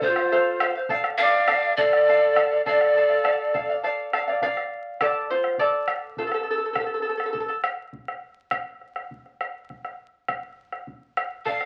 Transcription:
0.01 0.17 A4 medium
0.01 0.68 C5 medium
0.01 0.17 C5 medium
0.01 0.16 F5 medium
0.01 bombo low medium
0.07 0.71 F4 medium
0.16 0.31 C5 soft
0.16 0.31 F5 medium
0.16 bombo rim medium
0.32 0.59 A4 medium
0.32 0.60 C5 medium
0.32 0.61 F5 medium
0.60 0.75 A4 medium
0.60 0.75 C5 medium
0.60 0.74 F5 medium
0.60 bombo rim medium
0.75 0.91 C5 soft
0.75 0.89 F5 medium
0.89 1.18 A4 medium
0.89 1.19 D5 medium
0.89 1.20 F5 medium
0.89 bombo low medium
1.04 bombo rim medium
1.18 1.34 A4 medium
1.18 1.34 D5 medium
1.18 1.75 D5 loud
1.18 1.73 F5 loud
1.18 1.33 F5 medium
1.18 bombo rim soft
1.34 1.47 D5 soft
1.34 1.48 F5 medium
1.48 1.77 A4 medium
1.48 1.77 D5 medium
1.48 1.78 F5 medium
1.48 bombo rim medium
1.64 bombo rim soft
1.77 2.61 A4 medium
1.77 1.93 A4 medium
1.77 2.62 D5 medium
1.77 1.92 D5 medium
1.77 1.91 F5 medium
1.77 bombo low medium
1.92 2.08 D5 soft
1.92 2.07 F5 medium
1.92 bombo rim soft
2.08 2.35 A4 medium
2.08 2.36 D5 medium
2.08 2.37 F5 medium
2.36 2.51 A4 medium
2.36 2.51 D5 medium
2.36 2.50 F5 medium
2.36 bombo rim medium
2.52 2.65 D5 soft
2.52 2.66 F5 medium
2.66 3.79 A4 medium
2.66 2.95 A4 medium
2.66 3.79 D5 loud
2.66 2.95 D5 medium
2.66 2.96 F5 medium
2.66 bombo rim soft
2.66 bombo low medium
2.81 bombo rim soft
2.96 3.11 A4 medium
2.96 3.09 D5 medium
2.96 3.08 F5 medium
3.10 3.23 D5 soft
3.10 3.24 F5 soft
3.24 3.53 A4 medium
3.24 3.54 D5 medium
3.24 3.54 F5 medium
3.24 bombo rim medium
3.54 3.69 A4 medium
3.54 3.69 D5 medium
3.54 3.68 F5 medium
3.54 bombo low medium
3.69 3.83 D5 medium
3.69 3.83 F5 medium
3.83 4.12 A4 medium
3.83 4.12 D5 medium
3.83 4.13 F5 medium
4.13 4.28 A4 medium
4.13 4.28 D5 medium
4.13 4.26 F5 medium
4.13 bombo rim medium
4.27 4.42 D5 soft
4.27 4.41 F5 medium
4.27 bombo rim soft
4.42 4.97 D5 medium
4.42 4.97 F5 medium
4.42 bombo low medium
4.57 bombo rim soft
5.01 5.29 A4 medium
5.01 5.30 D5 medium
5.01 bombo rim medium
5.01 bombo low medium
5.30 5.58 F4 medium
5.30 5.59 C5 medium
5.30 bombo rim soft
5.44 bombo rim soft
5.58 6.14 A4 medium
5.58 6.20 D5 medium
5.58 bombo low medium
5.73 bombo rim soft
5.88 bombo rim medium
6.17 6.26 F4 medium
6.17 6.25 A4 medium
6.17 bombo low medium
6.27 6.33 A4 medium
6.32 6.41 A4 soft
6.32 bombo rim soft
6.43 6.49 A4 soft
6.51 6.57 A4 medium
6.58 6.64 A4 soft
6.66 6.72 A4 soft
6.73 6.79 A4 soft
6.73 bombo rim medium
6.73 bombo low medium
6.80 6.85 A4 soft
6.86 6.93 A4 soft
6.94 7.01 A4 soft
7.02 7.08 A4 soft
7.02 bombo rim soft
7.09 7.16 A4 soft
7.17 7.24 A4 soft
7.17 bombo rim soft
7.26 7.32 A4 soft
7.33 7.39 A4 soft
7.33 bombo low medium
7.40 7.47 A4 medium
7.48 7.55 A4 medium
7.48 bombo rim soft
7.64 bombo rim medium
7.93 bombo low medium
8.08 bombo rim soft
8.51 bombo rim medium
8.51 bombo low medium
8.81 bombo rim soft
8.96 bombo rim soft
9.11 bombo low medium
9.26 bombo rim soft
9.41 bombo rim soft
9.70 bombo rim soft
9.70 bombo low soft
9.85 bombo rim soft
10.28 bombo rim medium
10.28 bombo low medium
10.72 bombo rim soft
10.87 bombo low medium
11.17 bombo rim medium
11.45 11.65 A4 medium
11.45 11.65 D5 medium
11.45 11.65 F5 medium
11.45 bombo rim soft
11.45 bombo low medium
11.61 bombo rim soft

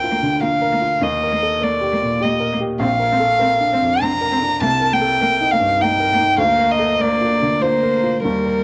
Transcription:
0.00 0.99 D2 soft
0.00 0.35 F4 soft
0.00 1.05 A4 soft
0.00 0.61 A#4 soft
0.00 0.41 G5 medium
0.11 0.19 A#3 soft
0.23 0.55 D3 soft
0.41 0.49 A#3 soft
0.41 0.75 F4 soft
0.41 1.05 F5 medium
0.61 0.94 A#4 soft
0.72 0.80 A#3 soft
0.81 1.02 F4 soft
1.01 2.77 D#2 medium
1.01 1.09 A#3 soft
1.01 1.65 D#5 medium
1.23 1.55 A#4 soft
1.32 1.40 A#3 soft
1.43 1.63 A4 soft
1.61 1.70 A#3 soft
1.61 1.94 A#4 soft
1.61 2.24 D5 medium
1.81 2.14 G4 soft
1.92 2.00 A#3 soft
2.02 2.34 A#2 soft
2.21 2.31 A#3 soft
2.21 2.53 G4 soft
2.21 2.52 D#5 medium
2.40 2.73 A#4 soft
2.52 2.60 A#3 soft
2.60 2.81 G4 soft
2.79 4.57 A#1 medium
2.79 2.88 C4 soft
2.79 4.03 F5 medium
2.99 3.32 A#4 soft
3.12 3.20 C4 medium
3.20 3.41 A4 soft
3.39 3.48 C4 medium
3.39 3.73 A#4 soft
3.61 3.94 D4 soft
3.73 3.81 C4 medium
3.82 4.14 F2 soft
4.01 4.10 C4 medium
4.01 4.34 D4 medium
4.01 4.62 A#5 medium
4.21 4.54 A#4 soft
4.32 4.40 C4 medium
4.42 4.62 D4 soft
4.61 6.37 C2 medium
4.61 4.70 A#3 medium
4.61 4.95 A5 medium
4.81 5.14 A#4 soft
4.92 5.00 A#3 medium
4.92 5.53 G5 medium
5.01 5.22 A4 soft
5.21 5.29 A#3 medium
5.21 5.53 A#4 soft
5.41 5.73 D#4 soft
5.52 5.61 A#3 soft
5.52 5.83 F5 medium
5.60 5.93 G2 soft
5.80 5.91 A#3 medium
5.80 6.13 D#4 medium
5.80 6.39 G5 medium
6.00 6.33 A#4 medium
6.13 6.21 A#3 medium
6.19 6.40 D#4 medium
6.38 8.19 D2 medium
6.38 6.73 F5 medium
6.44 6.99 A#3 medium
6.58 6.92 A#4 soft
6.71 7.03 D#5 medium
6.79 7.01 A4 soft
7.00 7.62 A#3 medium
7.00 7.34 A#4 soft
7.00 7.64 D5 medium
7.21 7.54 F4 soft
7.42 7.75 D3 soft
7.63 8.24 A#3 medium
7.63 7.96 F4 soft
7.63 8.23 C5 medium
7.83 8.16 A#4 soft
8.04 8.25 F4 soft
8.24 8.64 D#2 medium
8.24 8.64 G3 medium
8.24 8.64 A#4 medium
8.46 8.64 A#4 soft

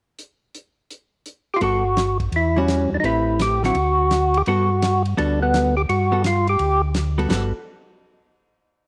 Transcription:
0.19 closed hi-hat soft
0.55 closed hi-hat medium
0.91 closed hi-hat soft
1.26 closed hi-hat soft
1.54 1.61 F4 medium
1.54 1.59 G4 medium
1.61 2.29 G1 medium
1.61 1.82 G3 soft
1.61 1.82 B3 soft
1.61 1.83 F#4 soft
1.61 2.18 F#4 medium
1.61 1.83 A4 soft
1.61 ride soft
1.97 snare medium
1.97 hi-hat pedal soft
1.97 ride soft
2.20 kick soft
2.20 ride soft
2.32 2.87 E2 medium
2.32 ride soft
2.36 2.58 E4 medium
2.56 3.02 E3 medium
2.56 3.02 G3 medium
2.56 2.90 C#4 medium
2.56 3.02 F#4 medium
2.68 snare medium
2.68 hi-hat pedal soft
2.68 ride medium
2.92 2.98 E2 soft
2.92 2.97 D4 medium
3.00 3.71 A1 medium
3.00 3.58 A3 soft
3.00 3.58 C4 soft
3.00 3.04 D#4 medium
3.00 ride soft
3.05 3.42 E4 medium
3.05 3.59 G4 soft
3.05 3.59 B4 soft
3.39 3.63 G4 medium
3.39 snare medium
3.39 hi-hat pedal soft
3.39 ride medium
3.63 3.74 D3 soft
3.63 3.75 F#3 medium
3.63 3.75 C4 medium
3.63 3.75 E4 medium
3.63 4.38 F#4 medium
3.63 snare soft
3.75 4.43 D2 medium
3.75 ride soft
4.11 snare medium
4.11 hi-hat pedal soft
4.11 ride medium
4.34 4.42 G4 medium
4.34 ride soft
4.46 5.15 G2 medium
4.46 4.68 G3 soft
4.46 4.68 B3 medium
4.46 5.02 F#4 medium
4.46 4.69 F#4 medium
4.46 4.69 A4 soft
4.46 ride soft
4.82 snare medium
4.82 hi-hat pedal soft
4.82 ride medium
5.05 ride soft
5.17 5.86 D2 medium
5.17 5.72 G3 medium
5.17 5.72 B3 medium
5.17 5.40 D4 medium
5.17 5.72 F#4 medium
5.17 5.72 A4 medium
5.17 ride soft
5.42 5.75 B3 medium
5.54 snare medium
5.54 hi-hat pedal medium
5.54 ride medium
5.77 5.82 G4 medium
5.89 6.57 G2 medium
5.89 6.22 F#4 medium
5.89 ride soft
6.12 6.23 G3 soft
6.12 6.23 B3 soft
6.12 6.23 F#4 medium
6.12 6.24 A4 medium
6.24 6.47 F4 medium
6.24 snare medium
6.24 hi-hat pedal soft
6.24 ride medium
6.47 6.82 G4 medium
6.47 ride soft
6.59 7.27 D2 medium
6.59 ride soft
6.94 snare medium
6.94 hi-hat pedal soft
6.94 ride medium
7.18 7.28 G3 soft
7.18 7.28 B3 soft
7.18 7.29 F#4 soft
7.18 7.29 A4 soft
7.18 ride soft
7.29 7.52 G1 medium
7.29 7.51 G3 medium
7.29 7.51 B3 medium
7.29 7.51 F#4 medium
7.29 7.52 A4 medium
7.29 snare medium
7.29 crash medium

